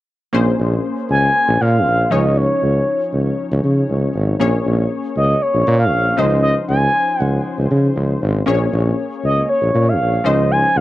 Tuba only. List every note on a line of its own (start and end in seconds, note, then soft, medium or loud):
0.34 0.53 A#1 medium
0.59 0.78 A#1 loud
1.10 1.29 C#2 medium
1.48 1.58 A#1 medium
1.61 1.88 A#2 loud
1.86 2.05 A#1 medium
2.12 2.50 C#2 loud
2.62 2.82 C#2 medium
3.13 3.32 C#2 medium
3.51 3.61 C#2 medium
3.64 3.83 C#3 medium
3.89 4.09 C#2 medium
4.15 4.34 G#1 medium
4.40 4.59 A#1 loud
4.66 4.85 A#1 loud
5.16 5.35 C#2 medium
5.54 5.64 A#1 medium
5.67 5.94 A#2 loud
5.93 6.12 A#1 medium
6.18 6.56 C#2 loud
6.69 6.88 C#2 loud
7.20 7.39 C#2 medium
7.58 7.68 C#2 medium
7.71 7.90 C#3 medium
7.96 8.15 C#2 medium
8.22 8.41 G#1 loud
8.47 8.66 A#1 loud
8.73 8.92 A#1 loud
9.23 9.43 C#2 medium
9.62 9.71 A#1 medium
9.74 10.01 A#2 loud
10.00 10.19 A#1 medium
10.25 10.63 C#2 medium
10.76 10.81 C#2 loud